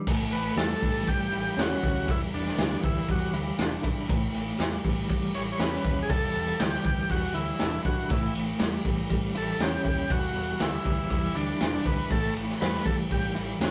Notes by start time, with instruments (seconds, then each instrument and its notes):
0.07 fingered electric bass A1, clean electric guitar A2, kick, crash
0.32 fingered electric bass A1, transistor combo organ B4, crash
0.56 fingered electric bass E2, clean electric guitar G3, transistor combo organ A4, snare, crash
0.82 fingered electric bass A1, clean electric guitar E3, kick, crash
1.07 fingered electric bass A1, clean electric guitar G3, transistor combo organ G4, kick, crash
1.31 fingered electric bass A1, clean electric guitar E4, crash
1.56 fingered electric bass E2, clean electric guitar C#4, transistor combo organ F#4, snare, crash
1.83 fingered electric bass D2, clean electric guitar E4, kick, crash
2.08 fingered electric bass E1, clean electric guitar E2, transistor combo organ E4, kick, crash
2.32 fingered electric bass E1, transistor combo organ D4, crash
2.46 snare
2.57 fingered electric bass D2, clean electric guitar G3, snare, crash
2.71 snare
2.83 fingered electric bass D2, clean electric guitar E3, transistor combo organ E4, kick, crash
3.08 fingered electric bass E1, clean electric guitar G3, transistor combo organ F#4, kick, crash
3.34 fingered electric bass D2, clean electric guitar E4, crash
3.58 fingered electric bass E1, clean electric guitar D4, snare, crash
3.83 fingered electric bass B1, clean electric guitar E4, kick, crash
4.08 fingered electric bass A1, clean electric guitar A2, kick, crash
4.33 fingered electric bass A1, crash
4.59 fingered electric bass E2, clean electric guitar G3, snare, crash
4.84 fingered electric bass A1, clean electric guitar E3, kick, crash
5.09 fingered electric bass A1, clean electric guitar G3, kick, crash
5.33 fingered electric bass A1, clean electric guitar E4, transistor combo organ C#5, crash
5.52 transistor combo organ C#5
5.59 fingered electric bass E2, clean electric guitar C#4, transistor combo organ B4, snare, crash
5.84 fingered electric bass D#2, clean electric guitar E4, kick, crash
6.03 transistor combo organ G#4
6.10 fingered electric bass E1, clean electric guitar E2, transistor combo organ A4, kick, crash
6.35 fingered electric bass E1, crash
6.59 fingered electric bass D2, clean electric guitar G3, transistor combo organ G4, snare, crash
6.73 snare
6.84 fingered electric bass D2, clean electric guitar E3, kick, crash
7.09 fingered electric bass E1, clean electric guitar G3, transistor combo organ F#4, kick, crash
7.34 fingered electric bass D2, clean electric guitar E4, transistor combo organ E4, crash
7.59 fingered electric bass E1, clean electric guitar D4, snare, crash
7.83 fingered electric bass B1, clean electric guitar E4, transistor combo organ F#4, kick, crash
8.09 fingered electric bass A1, clean electric guitar A2, transistor combo organ E4, kick, crash
8.34 fingered electric bass A1, crash
8.59 fingered electric bass E2, clean electric guitar G3, snare, crash
8.85 fingered electric bass A1, clean electric guitar E3, kick, crash
9.10 fingered electric bass A1, clean electric guitar G3, kick, crash
9.34 fingered electric bass A1, clean electric guitar E4, transistor combo organ A4, crash
9.59 fingered electric bass E2, clean electric guitar C#4, transistor combo organ G4, snare, crash
9.85 fingered electric bass D#2, clean electric guitar E4, kick, crash
10.09 fingered electric bass E1, clean electric guitar E2, transistor combo organ F#4, kick, crash
10.35 fingered electric bass E1, crash
10.60 fingered electric bass D2, clean electric guitar G3, transistor combo organ E4, snare, crash
10.85 fingered electric bass D2, clean electric guitar E3, kick, crash
11.10 fingered electric bass E1, clean electric guitar G3, transistor combo organ E4, kick, crash
11.35 fingered electric bass D2, transistor combo organ D4, clean electric guitar E4, crash
11.60 fingered electric bass E1, clean electric guitar D4, snare, crash
11.85 fingered electric bass D2, clean electric guitar E4, transistor combo organ B4, kick, crash
12.11 fingered electric bass A1, clean electric guitar A2, transistor combo organ A4, kick, crash
12.36 fingered electric bass A1, crash
12.49 snare
12.61 fingered electric bass E2, clean electric guitar G3, transistor combo organ B4, snare, crash
12.74 snare
12.85 fingered electric bass A1, clean electric guitar E3, transistor combo organ A4, kick, crash
13.10 fingered electric bass A1, clean electric guitar G3, transistor combo organ G4, kick, crash
13.35 fingered electric bass A1, clean electric guitar E4, crash
13.59 fingered electric bass E2, clean electric guitar C#4, snare, crash